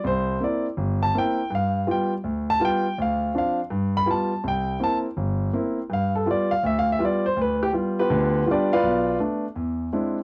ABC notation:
X:1
M:4/4
L:1/8
Q:"Swing" 1/4=164
K:Gmix
V:1 name="Grand piano"
c2 d z2 a g2 | f2 g z2 a g2 | f2 f z2 b a2 | g2 a z4 z |
f A d f (3e f e d c | B G z [B,FGB]3 [DGBd] [FBdf]- | [FBdf]2 z6 |]
V:2 name="Grand piano"
C,,2 [_B,CE] z G,,,2 [B,CE] z | G,,2 [G,B,F] z D,,2 [G,B,F] z | D,,2 [F,CD] z G,,2 [G,B,F] z | C,,2 [_B,CE] z G,,,2 [B,CE] z |
G,,2 [G,B,F] z D,,2 [G,B,F] z | D,,2 [G,B,F] z [D,,D,]2 [G,B,F] z | B,,,2 [A,B,D] z E,,2 [^G,^B,DE] z |]